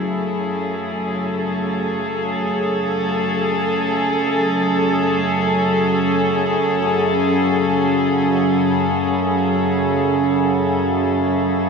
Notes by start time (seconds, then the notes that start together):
Already playing: F#2 C#3 F#3 A3 C#4 E4 G#4 A4